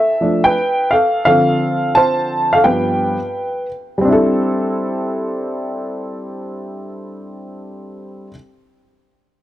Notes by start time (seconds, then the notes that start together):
Already playing: A4 E5
0.21 F3 A3 D4
0.44 B4 G5
0.91 A4 F5
1.25 D3 F3 C4 A4 F5
1.95 C5 A5
2.53 A4 F5
2.64 G2 F3 B3 B4 G5
3.98 G3 C4
4.05 D4 E4
4.12 A4